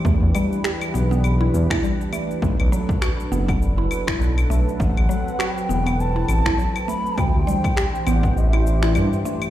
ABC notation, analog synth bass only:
X:1
M:4/4
L:1/16
Q:"Swing 16ths" 1/4=101
K:Ador
V:1 name="Analog synth bass" clef=bass
E,, E,, z4 B,,,4 E,, z4 z | B,,, B,,, z4 F,,,4 z2 B,,,2 B,,, z | A,,, A,,, z4 E,,,4 A,,, z4 z | D,, D,, z4 A,,,6 G,, z3 |]